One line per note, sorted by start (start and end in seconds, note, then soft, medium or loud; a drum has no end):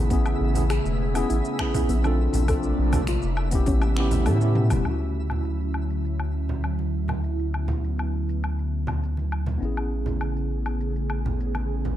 0.00 0.35 A1 medium
0.00 2.15 C#3 medium
0.00 2.15 A3 medium
0.00 2.14 B3 medium
0.00 4.87 E4 medium
0.00 2.16 G#4 loud
0.00 4.87 E5 medium
0.10 0.51 B3 medium
0.10 0.27 B3 medium
0.10 0.52 C#4 medium
0.10 0.52 E4 medium
0.10 0.53 G#4 medium
0.10 kick loud
0.10 open hi-hat soft
0.10 shaker medium
0.26 low woodblock medium
0.26 shaker soft
0.41 0.79 A1 loud
0.54 0.62 B3 medium
0.54 0.63 C#4 medium
0.54 0.63 E4 medium
0.54 0.64 G#4 medium
0.54 open hi-hat medium
0.54 low conga medium
0.54 shaker medium
0.70 0.97 G#4 medium
0.70 finger snap medium
0.70 open hi-hat soft
0.70 low woodblock medium
0.70 shaker soft
0.85 1.24 E1 medium
0.85 shaker soft
1.14 1.55 B3 medium
1.14 1.56 C#4 medium
1.14 1.56 E4 medium
1.14 1.57 G#4 loud
1.14 open hi-hat medium
1.14 low woodblock medium
1.14 shaker medium
1.29 1.41 A1 medium
1.29 1.46 E4 medium
1.29 open hi-hat soft
1.29 shaker medium
1.45 shaker soft
1.59 2.00 B3 medium
1.59 2.01 C#4 medium
1.59 2.01 E4 medium
1.59 2.02 G#4 medium
1.59 finger snap medium
1.59 kick medium
1.59 low woodblock medium
1.74 kick medium
1.74 open hi-hat medium
1.74 low conga medium
1.74 shaker medium
1.89 2.28 A#1 loud
1.89 2.05 B3 medium
1.89 open hi-hat soft
1.89 shaker medium
2.03 2.44 C4 medium
2.03 2.45 D4 medium
2.03 2.46 F4 medium
2.03 2.46 A4 loud
2.03 high conga soft
2.03 low woodblock medium
2.03 shaker soft
2.18 3.66 C3 medium
2.18 3.65 A3 medium
2.18 3.65 A#3 medium
2.18 3.65 D4 loud
2.33 2.73 A#1 medium
2.33 open hi-hat medium
2.33 high conga medium
2.33 low conga medium
2.33 shaker medium
2.48 2.89 C4 medium
2.48 2.90 D4 medium
2.48 2.90 F4 medium
2.48 2.75 A4 medium
2.48 2.91 A4 medium
2.48 kick loud
2.48 open hi-hat soft
2.48 low woodblock medium
2.48 shaker medium
2.63 shaker soft
2.79 3.17 A#1 loud
2.92 3.00 C4 medium
2.92 3.01 D4 medium
2.92 3.01 F4 medium
2.92 3.02 A4 loud
2.92 kick medium
2.92 open hi-hat medium
2.92 high conga medium
2.92 low conga medium
2.92 low woodblock medium
2.92 shaker medium
3.07 3.24 F4 medium
3.07 finger snap medium
3.07 open hi-hat soft
3.07 shaker medium
3.22 3.62 F1 medium
3.22 shaker soft
3.37 low woodblock medium
3.51 3.93 B3 medium
3.51 3.93 C#4 medium
3.51 3.94 E4 medium
3.51 3.95 G4 loud
3.51 kick loud
3.51 open hi-hat medium
3.51 shaker medium
3.66 4.28 A1 medium
3.66 4.85 C#3 medium
3.66 4.85 G3 medium
3.66 4.85 A3 medium
3.66 3.84 C#4 medium
3.66 4.85 E4 medium
3.66 kick loud
3.66 open hi-hat soft
3.66 high tom medium
3.66 shaker medium
3.82 high tom medium
3.82 low woodblock medium
3.82 shaker soft
3.97 4.38 B3 medium
3.97 4.38 C#4 medium
3.97 4.39 E4 medium
3.97 4.40 G4 medium
3.97 finger snap medium
4.11 open hi-hat medium
4.11 mid tom medium
4.11 low conga medium
4.11 shaker medium
4.26 4.73 A2 loud
4.26 4.54 A4 medium
4.26 open hi-hat soft
4.26 mid tom medium
4.26 low woodblock medium
4.26 shaker medium
4.41 4.82 B3 medium
4.41 4.83 C#4 medium
4.41 4.83 E4 medium
4.41 4.84 G4 medium
4.41 high conga medium
4.41 shaker soft
4.55 mid tom loud
4.70 4.82 E1 loud
4.70 mid tom medium
4.70 open hi-hat medium
4.70 high conga medium
4.70 low conga medium
4.70 low woodblock medium
4.70 shaker medium
4.83 9.58 D2 medium
4.83 9.57 D3 medium
4.83 9.57 F#3 medium
4.83 9.56 A3 medium
4.83 9.57 C#4 medium
4.83 7.21 C#4 medium
4.83 9.57 E4 medium
4.83 low woodblock medium
4.83 shaker soft
4.88 9.59 E4 medium
4.88 9.60 F#4 medium
5.00 shaker soft
5.30 low conga medium
5.30 low woodblock medium
5.30 shaker medium
5.45 shaker soft
5.60 shaker soft
5.74 low woodblock medium
5.90 shaker medium
6.05 shaker soft
6.20 low woodblock medium
6.20 shaker soft
6.49 low conga medium
6.49 shaker medium
6.64 low woodblock medium
6.64 shaker soft
6.79 high conga soft
6.79 shaker soft
7.08 high conga medium
7.08 low conga medium
7.08 low woodblock medium
7.08 shaker medium
7.23 9.59 B3 medium
7.23 shaker soft
7.39 shaker soft
7.54 low woodblock medium
7.68 high conga medium
7.68 low conga medium
7.68 shaker medium
7.84 shaker soft
7.99 low woodblock medium
7.99 shaker soft
8.29 shaker medium
8.44 low woodblock medium
8.44 shaker soft
8.59 shaker soft
8.87 low conga medium
8.87 low woodblock medium
8.87 shaker medium
9.03 shaker soft
9.17 high conga medium
9.17 shaker soft
9.32 low woodblock medium
9.46 high conga medium
9.46 low conga medium
9.46 shaker medium
9.58 11.97 A1 medium
9.58 11.97 C#3 medium
9.58 11.97 A3 medium
9.58 11.97 B3 medium
9.58 11.97 C#4 medium
9.62 11.97 B3 medium
9.62 11.97 E4 medium
9.62 11.97 G#4 medium
9.62 shaker soft
9.77 low woodblock medium
9.77 shaker soft
10.06 low conga medium
10.06 shaker medium
10.21 low woodblock medium
10.21 shaker soft
10.36 shaker soft
10.66 low woodblock medium
10.66 shaker medium
10.80 shaker medium
10.96 shaker soft
11.10 low woodblock medium
11.25 low conga medium
11.25 shaker medium
11.40 shaker soft
11.55 high conga medium
11.55 low woodblock medium
11.55 shaker soft
11.85 high conga medium
11.85 low conga medium
11.85 shaker medium